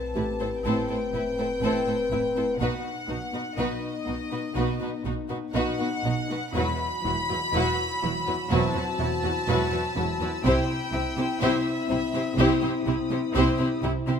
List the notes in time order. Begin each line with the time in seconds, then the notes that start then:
Already playing: C4 B4 A5, sub drop
0.15 A1 A2 A3 C4 E4 G4 B4
0.41 A2 C4 E4 A4 C5
0.64 A1 A2 C4 E4 A4 C5 G5
0.89 A2 C4 E4 A4 C5
1.13 A1 A2 C4 E4 B4
1.38 A2 C4 E4 A4 C5
1.62 A1 A2 C4 E4 A4 C5
1.87 A2 C4 E4 A4 C5
2.11 A1 A2 C4 E4 B4
2.35 A2 C4 E4 A4 C5
2.59 B1 B2 B3 D#4 F#4 B4 F#5
3.09 B1 B2 B3 D#4 F#4
3.33 B2 B3 D#4 F#4 B4
3.57 B1 B2 B3 D#4 F#4 B4 D#5
4.06 B1 B2 B3 D#4 F#4
4.31 B2 B3 D#4 F#4 B4
4.56 B1 B2 B3 D#4 F#4 B4
4.81 B2 B3 D#4 F#4 B4
5.05 B1 B2 B3 D#4 F#4
5.29 B2 B3 D#4 F#4 B4
5.53 B1 B2 B3 D#4 F#4 B4 D#5 F#5
5.79 B2 B3 D#4 F#4 B4
6.04 B1 B2 B3 D#4 F#4
6.29 B2 B3 D#4 F#4 B4
6.54 E1 E2 F#3 E4 F#4 B4 B5
7.05 E1 E2 E3 F#3 E4 F#4
7.30 E2 F#3 E4 F#4 B4
7.54 E1 E2 F#3 E4 F#4 B4 E6
8.03 E1 E2 E3 F#3 E4 F#4
8.26 E2 F#3 E4 F#4 B4
8.51 E1 E2 F#3 C4 E4 F#4 B4 C5 A5
8.74 E2 F#3 E4 F#4 B4
8.99 E1 E2 F#3 E4 F#4
9.23 E2 F#3 E4 F#4 B4
9.48 E1 E2 F#3 E4 F#4 B4
9.72 E2 F#3 E4 F#4 B4
9.96 E1 E2 F#3 E4 F#4
10.21 E2 F#3 E4 F#4 B4
10.45 C2 C3 C4 E4 G4 C5 G5
10.93 C2 C3 C4 E4 G4
11.17 C3 C4 E4 G4 C5
11.41 C2 C3 C4 E4 G4 C5 E5
11.89 C2 C3 C4 E4 G4
12.14 C3 C4 E4 G4 C5
12.25 D#6
12.38 C2 C3 C4 E4 G4 C5
12.62 C3 C4 E4 G4 C5
12.86 C2 C3 C4 E4 G4
13.11 C3 C4 E4 G4 C5
13.35 C2 C3 C4 E4 G4 C5
13.59 C3 C4 E4 G4 C5
13.83 C2 C3 C4 E4 G4
14.07 C3 C4 E4 G4 C5